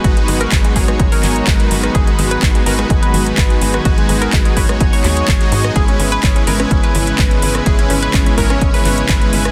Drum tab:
HH |xxoxxxoxxooxxxox|xxoxxxo-xxoxxxox|xxoxxxoxxooxxxo-|xxoxxxoxxxoxxxo-|
CP |----x-----x-x---|----x-------x---|----x-----x-x---|----x-------x---|
SD |-------r-------r|-------r-------r|-------r-------r|-------r-------r|
BD |o---o-o-o---o---|o---o---o---o---|o---o-o-o---o---|o---o---o---o---|

HH |xxoxxxoxxooxxxo-|
CP |----x-----x-x---|
SD |-------r-------r|
BD |o---o-o-o---o---|